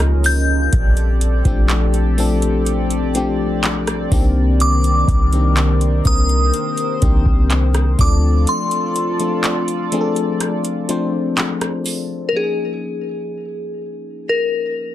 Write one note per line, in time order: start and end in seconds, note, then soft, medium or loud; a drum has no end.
0.00 0.69 C#2 loud
0.00 0.74 E3 medium
0.00 0.75 F3 medium
0.00 0.75 A#3 medium
0.00 0.69 C#4 medium
0.00 0.75 C#4 medium
0.00 0.74 D#4 medium
0.00 0.69 F4 medium
0.00 0.74 G4 medium
0.00 0.64 A#4 medium
0.00 0.69 A#4 medium
0.00 0.69 D#5 medium
0.00 cross-stick loud
0.00 closed hi-hat medium
0.24 3.11 G6 loud
0.24 open hi-hat medium
0.73 1.42 A#1 loud
0.73 12.30 C4 medium
0.73 4.08 G4 medium
0.73 4.08 A4 medium
0.73 6.01 D5 medium
0.73 kick loud
0.73 closed hi-hat medium
0.97 closed hi-hat soft
1.21 closed hi-hat medium
1.45 4.07 A#1 loud
1.45 1.96 F3 medium
1.45 1.96 A3 medium
1.45 1.97 C4 medium
1.45 1.97 D4 medium
1.45 1.97 G4 medium
1.45 kick medium
1.45 closed hi-hat soft
1.69 clap loud
1.69 closed hi-hat medium
1.94 closed hi-hat soft
2.18 2.86 F3 medium
2.18 2.86 A3 medium
2.18 2.86 C4 medium
2.18 2.86 D4 medium
2.18 2.87 A4 loud
2.18 open hi-hat soft
2.42 closed hi-hat medium
2.66 closed hi-hat medium
2.90 closed hi-hat medium
3.15 4.11 F3 medium
3.15 4.12 A3 medium
3.15 4.11 C4 medium
3.15 4.12 D4 medium
3.15 4.13 G4 loud
3.15 closed hi-hat medium
3.63 clap loud
3.63 closed hi-hat medium
3.87 cross-stick loud
3.87 closed hi-hat medium
4.11 5.04 C2 loud
4.11 7.95 D#3 medium
4.11 5.08 D#3 medium
4.11 5.09 A#3 medium
4.11 5.09 C4 medium
4.11 5.09 D4 medium
4.11 5.09 G4 loud
4.11 7.95 A#4 medium
4.11 kick loud
4.11 open hi-hat medium
4.60 6.10 D6 loud
4.60 closed hi-hat medium
4.84 closed hi-hat soft
5.08 6.01 C2 loud
5.08 kick medium
5.08 closed hi-hat medium
5.33 5.83 D#3 medium
5.33 5.84 A#3 medium
5.33 5.84 C4 medium
5.33 5.84 D4 medium
5.33 5.84 G4 medium
5.33 closed hi-hat medium
5.57 clap loud
5.57 closed hi-hat medium
5.81 closed hi-hat soft
6.05 6.52 C2 loud
6.05 6.73 D#3 medium
6.05 6.73 A#3 medium
6.05 6.73 C4 medium
6.05 6.74 D4 medium
6.05 6.74 A#4 medium
6.05 7.97 C5 medium
6.05 8.05 D#6 loud
6.05 kick loud
6.05 open hi-hat soft
6.29 closed hi-hat soft
6.54 closed hi-hat medium
6.77 closed hi-hat medium
7.02 7.25 C2 loud
7.02 7.99 D#3 medium
7.02 7.99 A#3 medium
7.02 7.98 C4 medium
7.02 7.99 D4 medium
7.02 8.00 G4 medium
7.02 kick loud
7.02 closed hi-hat medium
7.26 7.96 C2 loud
7.26 kick medium
7.50 clap loud
7.50 closed hi-hat medium
7.74 cross-stick loud
7.74 closed hi-hat medium
7.99 8.45 D2 loud
7.99 8.95 F3 medium
7.99 8.96 A3 medium
7.99 8.96 C4 medium
7.99 8.96 D4 medium
7.99 12.30 F4 medium
7.99 12.30 A4 medium
7.99 8.96 A4 medium
7.99 12.30 D5 loud
7.99 8.15 D6 loud
7.99 kick loud
7.99 open hi-hat medium
8.47 11.34 C6 medium
8.47 closed hi-hat medium
8.71 closed hi-hat soft
8.96 closed hi-hat medium
9.20 9.70 F3 medium
9.20 9.71 A3 medium
9.20 9.71 C4 medium
9.20 9.71 D4 medium
9.20 9.71 A4 medium
9.20 closed hi-hat soft
9.44 clap loud
9.44 closed hi-hat medium
9.68 closed hi-hat soft
9.92 10.60 F3 medium
9.92 10.60 A3 medium
9.92 10.60 C4 medium
9.92 10.61 D4 medium
9.92 10.00 G#4 medium
9.92 closed hi-hat medium
10.01 10.64 A4 loud
10.16 closed hi-hat soft
10.40 cross-stick medium
10.40 closed hi-hat medium
10.65 closed hi-hat medium
10.89 11.90 F3 medium
10.89 11.91 A3 medium
10.89 11.91 C4 medium
10.89 11.91 D4 medium
10.89 11.91 C5 medium
10.89 closed hi-hat medium
11.37 clap loud
11.37 closed hi-hat medium
11.61 cross-stick loud
11.61 closed hi-hat medium
11.86 open hi-hat medium
12.29 12.35 A#4 medium
12.33 14.95 F3 medium
12.33 14.95 A#3 medium
12.33 14.95 C#4 soft
12.33 14.95 D#4 medium
12.33 14.35 G#4 medium
12.37 12.42 G4 medium
12.43 14.95 G#4 medium
14.29 14.95 A#4 medium